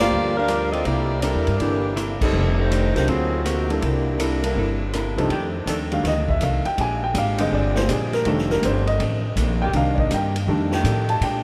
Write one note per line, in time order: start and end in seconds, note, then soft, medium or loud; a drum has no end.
0.00 0.40 G3 medium
0.00 0.33 A#3 medium
0.00 0.40 A#3 soft
0.00 0.41 D4 soft
0.00 0.33 F4 medium
0.00 0.41 F4 medium
0.00 0.34 G4 medium
0.00 0.41 A4 medium
0.00 0.33 D5 loud
0.11 0.81 D2 medium
0.11 0.37 G2 soft
0.11 0.38 F3 soft
0.11 0.38 A#3 soft
0.15 0.39 D4 soft
0.37 0.71 D4 medium
0.37 0.71 G4 medium
0.37 0.71 A#4 medium
0.37 0.71 F5 medium
0.48 0.74 G2 medium
0.48 0.74 F3 medium
0.48 0.74 A#3 medium
0.48 0.75 D4 medium
0.48 cross-stick medium
0.48 hi-hat pedal soft
0.48 ride medium
0.72 0.84 C4 medium
0.72 0.84 F4 medium
0.72 0.84 A4 medium
0.72 0.84 D#5 medium
0.72 ride soft
0.85 1.31 C2 medium
0.85 1.11 C3 soft
0.85 1.22 A#3 medium
0.85 1.12 A#3 medium
0.85 1.20 E4 medium
0.85 1.12 E4 medium
0.85 1.23 G4 medium
0.85 1.12 A4 soft
0.85 1.22 D5 medium
0.85 ride medium
1.21 1.48 C3 medium
1.21 1.59 G3 medium
1.21 1.49 A#3 medium
1.21 1.59 D4 medium
1.21 1.59 E4 medium
1.21 1.49 E4 medium
1.21 1.49 A4 medium
1.21 1.59 A#4 medium
1.21 hi-hat pedal medium
1.21 ride medium
1.35 1.46 E2 medium
1.47 1.59 G2 medium
1.47 ride soft
1.58 2.17 G1 medium
1.58 1.84 C3 soft
1.58 1.94 E3 medium
1.58 1.85 A#3 soft
1.58 1.94 A#3 medium
1.58 1.94 D4 medium
1.58 1.85 E4 soft
1.58 1.94 G4 medium
1.58 1.86 A4 soft
1.58 ride medium
1.96 2.22 C3 medium
1.96 2.22 A#3 medium
1.96 2.22 E4 medium
1.96 2.23 A4 medium
1.96 cross-stick medium
1.96 hi-hat pedal medium
1.96 ride medium
2.21 2.32 G1 medium
2.21 2.56 G3 medium
2.21 2.56 C4 medium
2.21 2.56 D#4 medium
2.21 2.56 A4 loud
2.21 kick medium
2.21 crash medium
2.33 2.91 F1 medium
2.33 2.59 F2 soft
2.33 2.59 D#3 soft
2.33 2.60 A3 medium
2.33 2.60 D4 soft
2.58 2.94 A3 medium
2.58 2.94 D#4 medium
2.58 2.94 G4 medium
2.58 2.94 C5 medium
2.70 2.96 F2 medium
2.70 2.96 D#3 medium
2.70 2.96 A3 medium
2.70 2.97 D4 medium
2.70 hi-hat pedal medium
2.70 ride medium
2.95 3.07 C2 medium
2.95 3.06 F#3 medium
2.95 3.07 A3 medium
2.95 3.06 C4 medium
2.95 3.07 D4 medium
2.95 3.07 D#4 medium
2.95 3.07 F4 soft
2.95 3.07 G4 medium
2.95 3.07 A#4 medium
2.95 3.07 C5 medium
2.95 snare soft
2.95 ride soft
3.07 3.78 D2 medium
3.07 3.33 D3 soft
3.07 3.45 F#3 medium
3.07 3.33 A#3 soft
3.07 3.45 C4 medium
3.07 3.34 C4 medium
3.07 3.45 F4 medium
3.07 3.34 F#4 medium
3.07 3.45 G#4 medium
3.07 ride medium
3.45 3.68 C3 medium
3.45 3.70 D3 medium
3.45 3.68 F3 medium
3.45 3.70 A#3 medium
3.45 3.68 A#3 medium
3.45 3.71 C4 medium
3.45 3.68 F#4 medium
3.45 3.71 F#4 medium
3.45 cross-stick medium
3.45 hi-hat pedal medium
3.45 ride medium
3.69 3.80 G3 medium
3.69 4.93 G3 medium
3.69 3.81 A#3 medium
3.69 4.93 A#3 medium
3.69 4.93 D4 medium
3.69 3.81 D4 medium
3.69 4.93 E4 medium
3.69 3.81 E4 medium
3.69 3.81 A4 medium
3.69 ride soft
3.81 4.52 C2 medium
3.81 4.07 C3 medium
3.81 4.07 A#3 soft
3.81 4.08 E4 medium
3.81 4.09 A4 medium
3.81 ride medium
4.18 4.44 C3 medium
4.18 4.45 A#3 medium
4.18 4.45 E4 medium
4.18 4.45 A4 medium
4.18 hi-hat pedal medium
4.18 ride medium
4.43 4.54 G3 medium
4.43 4.55 A#3 medium
4.43 4.55 D4 soft
4.43 4.55 E4 medium
4.43 4.55 A4 medium
4.43 ride medium
4.56 5.13 G1 medium
4.56 4.82 C3 medium
4.56 4.82 A#3 soft
4.56 4.83 E4 medium
4.56 4.83 A4 medium
4.93 5.19 C3 medium
4.93 5.19 A#3 medium
4.93 5.20 E4 medium
4.93 5.20 A4 medium
4.93 cross-stick medium
4.93 hi-hat pedal soft
4.93 ride medium
5.16 5.29 C2 medium
5.16 5.29 F2 medium
5.16 5.29 G3 medium
5.16 5.29 C4 medium
5.16 5.29 D4 medium
5.16 5.29 D#4 medium
5.16 5.29 A4 medium
5.16 ride soft
5.30 5.65 F2 medium
5.30 5.56 F2 medium
5.30 5.47 D#3 medium
5.30 5.56 D#3 medium
5.30 5.48 A3 medium
5.30 5.57 A3 medium
5.30 5.47 D4 medium
5.30 5.57 D4 medium
5.30 5.47 G4 medium
5.30 ride medium
5.66 6.02 D#2 medium
5.66 5.92 F2 medium
5.66 5.83 D#3 medium
5.66 5.93 D#3 medium
5.66 5.83 A3 medium
5.66 5.93 A3 medium
5.66 5.84 D4 medium
5.66 5.94 D4 medium
5.66 5.84 A4 medium
5.66 hi-hat pedal medium
5.66 ride medium
5.92 6.13 D#3 soft
5.92 6.13 G3 soft
5.92 6.13 A3 soft
5.92 6.13 D4 soft
5.92 6.05 F5 medium
5.92 ride soft
6.03 6.39 D2 medium
6.03 6.29 F2 soft
6.03 6.30 D#3 soft
6.03 6.30 A3 soft
6.03 6.30 D4 medium
6.03 snare soft
6.03 ride medium
6.08 6.29 D#5 medium
6.29 6.41 E5 medium
6.29 kick medium
6.41 6.63 C2 medium
6.41 6.67 F2 medium
6.41 6.67 D#3 medium
6.41 6.67 A3 medium
6.41 6.68 D4 medium
6.41 6.66 F5 medium
6.41 hi-hat pedal medium
6.41 ride medium
6.65 6.78 G5 medium
6.65 muted upright bass stroke soft
6.65 ride soft
6.78 7.14 A#1 medium
6.78 7.04 A#2 soft
6.78 7.04 G#3 soft
6.78 7.05 D4 medium
6.78 7.05 G4 soft
6.78 7.03 G#5 medium
6.78 ride medium
7.04 7.15 G5 medium
7.14 7.50 G#1 medium
7.14 7.40 A#2 medium
7.14 7.40 G#3 medium
7.14 7.40 D4 medium
7.14 7.41 G4 medium
7.14 7.40 F5 medium
7.14 hi-hat pedal medium
7.14 ride medium
7.37 7.85 D3 medium
7.37 8.22 D3 soft
7.37 8.22 G3 soft
7.37 8.22 G#3 soft
7.37 7.85 C4 medium
7.37 8.22 C4 medium
7.37 7.86 G4 loud
7.37 7.52 D#5 medium
7.37 ride medium
7.52 7.88 G1 medium
7.52 7.77 A#2 medium
7.52 7.78 G#3 medium
7.52 7.78 D4 soft
7.52 7.79 G4 soft
7.52 7.77 D5 medium
7.76 7.89 C5 medium
7.76 snare medium
7.88 8.24 A#1 medium
7.88 8.14 A#2 medium
7.88 8.15 G#3 medium
7.88 8.15 D4 medium
7.88 8.15 G4 medium
7.88 8.13 G#4 medium
7.88 hi-hat pedal soft
7.88 ride medium
8.13 8.26 A#4 medium
8.13 snare soft
8.13 ride soft
8.25 8.61 F1 medium
8.25 8.51 F2 medium
8.25 8.84 D#3 soft
8.25 8.52 D#3 soft
8.25 8.84 G3 soft
8.25 8.84 A3 soft
8.25 8.52 A3 medium
8.25 8.85 D4 medium
8.25 8.52 D4 soft
8.25 ride medium
8.29 8.51 A4 medium
8.38 snare soft
8.50 8.63 A#4 medium
8.50 snare soft
8.62 8.98 G1 medium
8.62 8.89 F2 medium
8.62 8.89 D#3 medium
8.62 8.90 A3 medium
8.62 8.90 D4 medium
8.62 8.87 C5 medium
8.62 hi-hat pedal medium
8.62 ride medium
8.87 9.33 D#5 medium
8.87 ride soft
8.99 9.35 A1 medium
8.99 9.25 F2 medium
8.99 9.26 D#3 medium
8.99 9.26 A3 medium
8.99 9.26 D4 soft
8.99 ride medium
9.36 9.72 A#1 medium
9.36 9.62 F2 medium
9.36 9.63 D#3 medium
9.36 9.63 A3 medium
9.36 9.63 D4 medium
9.36 hi-hat pedal medium
9.36 ride medium
9.61 9.70 D#3 medium
9.61 9.70 A#3 medium
9.61 9.70 C4 medium
9.61 9.71 G4 loud
9.61 9.74 G5 medium
9.73 10.09 C2 medium
9.73 10.00 C3 soft
9.73 10.44 D#3 soft
9.73 10.00 G3 soft
9.73 10.44 A#3 soft
9.73 10.01 A#3 medium
9.73 10.44 D4 medium
9.73 9.99 F5 medium
9.73 ride medium
9.77 10.01 D#4 soft
9.95 9.97 D5 soft
9.95 kick medium
10.00 10.11 D#5 medium
10.10 10.46 G2 medium
10.10 10.36 C3 medium
10.10 10.36 G3 medium
10.10 10.36 A#3 medium
10.10 10.37 D#4 medium
10.10 hi-hat pedal medium
10.10 ride medium
10.14 10.36 G5 medium
10.36 ride medium
10.47 10.83 F2 medium
10.47 10.73 F2 medium
10.47 10.75 D#3 soft
10.47 10.73 D#3 medium
10.47 10.76 G3 soft
10.47 10.76 A3 soft
10.47 10.74 A3 medium
10.47 10.76 D4 medium
10.47 10.75 D4 medium
10.72 11.19 D#3 medium
10.72 11.19 A3 loud
10.72 11.19 D4 medium
10.72 11.19 G4 loud
10.72 snare soft
10.84 11.10 F2 medium
10.84 11.20 A2 medium
10.84 11.11 D#3 medium
10.84 11.11 A3 medium
10.84 11.11 D4 medium
10.84 hi-hat pedal soft
10.84 ride medium
11.09 11.21 A5 medium
11.09 ride soft
11.21 11.43 A#2 medium
11.21 11.43 A#2 soft
11.21 11.43 G#3 soft
11.21 11.43 D4 medium
11.21 11.43 G5 medium
11.21 ride medium
11.25 11.43 G4 soft